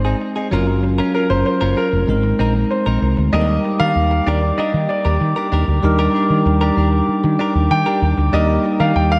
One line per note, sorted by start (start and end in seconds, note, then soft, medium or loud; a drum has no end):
0.00 0.13 G#1 medium
0.00 0.48 G#3 medium
0.00 0.48 C4 medium
0.00 0.48 D#4 medium
0.00 0.48 C5 medium
0.00 0.49 C5 medium
0.05 0.16 C4 soft
0.05 0.16 D#4 medium
0.05 0.16 G#4 medium
0.20 muted clean electric guitar stroke soft
0.36 0.48 C4 soft
0.36 0.47 D#4 medium
0.36 0.47 G#4 medium
0.51 0.99 F#1 medium
0.51 2.05 F#3 medium
0.51 0.65 C#4 medium
0.51 2.05 C#4 medium
0.51 0.66 F4 medium
0.51 2.06 F4 medium
0.51 0.66 A#4 medium
0.51 2.06 A#4 medium
0.67 muted clean electric guitar stroke soft
0.83 muted clean electric guitar stroke soft
0.98 1.13 C#4 medium
0.98 1.13 F4 medium
0.98 1.12 A#4 medium
1.14 1.25 C#4 medium
1.14 1.26 F4 medium
1.14 1.29 A#4 medium
1.14 1.26 A#4 medium
1.30 1.42 F#1 medium
1.30 1.44 C5 loud
1.30 muted clean electric guitar stroke soft
1.45 1.78 C5 loud
1.45 muted clean electric guitar stroke soft
1.61 1.73 F#1 medium
1.61 1.75 C#4 medium
1.61 1.75 F4 medium
1.61 1.75 A#4 medium
1.76 1.87 C#4 medium
1.76 1.88 F4 medium
1.76 2.98 A#4 medium
1.76 1.88 A#4 medium
1.92 2.05 F1 medium
1.92 muted clean electric guitar stroke soft
2.07 2.32 G#1 loud
2.07 3.30 G#3 medium
2.07 3.31 C4 medium
2.07 3.31 D#4 medium
2.07 3.32 A#4 medium
2.23 muted clean electric guitar stroke soft
2.39 2.63 A#1 medium
2.39 2.53 C4 medium
2.39 2.53 D#4 medium
2.39 2.54 A#4 medium
2.55 muted clean electric guitar stroke soft
2.71 3.35 C5 medium
2.71 muted clean electric guitar stroke soft
2.86 2.98 A#1 medium
2.86 3.00 C4 medium
2.86 3.00 D#4 medium
2.86 3.00 A#4 medium
3.02 3.14 C2 medium
3.02 muted clean electric guitar stroke soft
3.17 3.30 D2 medium
3.17 muted clean electric guitar stroke soft
3.32 3.57 D#2 loud
3.32 5.79 G3 medium
3.32 5.79 A#3 medium
3.32 3.47 D4 medium
3.32 5.80 D#4 medium
3.32 3.47 G4 medium
3.32 9.19 G4 medium
3.32 3.41 A4 medium
3.32 3.47 A#4 medium
3.32 3.77 D#5 loud
3.32 9.19 G5 medium
3.32 9.19 D6 medium
3.41 5.83 A#4 medium
3.48 muted clean electric guitar stroke medium
3.64 muted clean electric guitar stroke soft
3.80 3.92 D#3 medium
3.80 3.91 D4 soft
3.80 3.91 G4 soft
3.80 3.91 A#4 medium
3.80 4.28 F5 loud
3.96 4.19 D#2 medium
4.11 muted clean electric guitar stroke soft
4.26 4.51 D#2 medium
4.26 4.41 D4 medium
4.26 4.41 G4 medium
4.26 4.41 A#4 loud
4.26 4.59 D5 medium
4.43 muted clean electric guitar stroke soft
4.58 4.72 D4 medium
4.58 4.72 G4 medium
4.58 4.73 A#4 medium
4.58 4.90 D#5 medium
4.58 muted fretless electric bass stroke soft
4.74 4.86 D#3 medium
4.74 muted clean electric guitar stroke soft
4.89 5.48 D5 medium
4.89 muted clean electric guitar stroke soft
5.05 5.17 D#2 medium
5.05 5.17 D4 soft
5.05 5.16 G4 medium
5.05 5.16 A#4 medium
5.21 5.33 D#3 medium
5.21 muted clean electric guitar stroke soft
5.36 5.48 D4 medium
5.36 5.47 G4 medium
5.36 5.47 A#4 medium
5.52 5.64 D#2 medium
5.52 5.66 D4 medium
5.52 5.66 G4 medium
5.52 5.66 A#4 medium
5.68 5.80 D2 medium
5.68 muted clean electric guitar stroke soft
5.83 6.07 D#2 loud
5.83 8.29 G3 medium
5.83 8.29 D4 medium
5.83 8.30 D#4 medium
5.83 8.30 A#4 medium
5.83 muted clean electric guitar stroke soft
5.99 6.13 D4 medium
5.99 6.13 G4 medium
5.99 6.13 A#4 medium
6.14 6.25 D4 medium
6.14 6.26 G4 medium
6.14 6.26 A#4 medium
6.30 6.42 D#3 medium
6.30 muted clean electric guitar stroke soft
6.46 6.69 D#2 medium
6.46 muted clean electric guitar stroke soft
6.61 6.76 D4 medium
6.61 6.75 G4 medium
6.61 6.75 A#4 medium
6.77 7.01 D#2 medium
6.77 6.88 D4 medium
6.77 6.88 G4 medium
6.77 6.88 A#4 medium
6.93 muted clean electric guitar stroke soft
7.08 muted fretless electric bass stroke soft
7.24 7.36 D#3 medium
7.24 muted clean electric guitar stroke soft
7.39 7.53 D4 medium
7.39 7.54 G4 medium
7.39 7.54 A#4 medium
7.55 7.67 D#2 medium
7.55 muted clean electric guitar stroke soft
7.71 7.83 D#3 loud
7.71 8.35 G5 loud
7.71 muted clean electric guitar stroke soft
7.86 8.01 D4 medium
7.86 8.00 G4 medium
7.86 8.00 A#4 medium
8.02 8.14 D#2 medium
8.02 muted clean electric guitar stroke soft
8.18 8.29 D2 medium
8.18 muted clean electric guitar stroke soft
8.32 8.57 D#2 loud
8.32 9.19 G3 medium
8.32 9.19 A#3 medium
8.32 8.47 D4 medium
8.32 9.19 D#4 medium
8.32 8.47 G4 medium
8.32 9.19 A#4 medium
8.32 8.48 A#4 medium
8.32 8.77 D#5 medium
8.49 muted clean electric guitar stroke soft
8.64 muted clean electric guitar stroke soft
8.80 8.92 D#3 medium
8.80 8.92 D4 soft
8.80 8.91 G4 medium
8.80 8.91 A#4 medium
8.80 8.96 F5 medium
8.96 9.19 D#2 medium
8.96 9.12 G5 medium
9.11 9.19 F5 loud
9.11 muted clean electric guitar stroke soft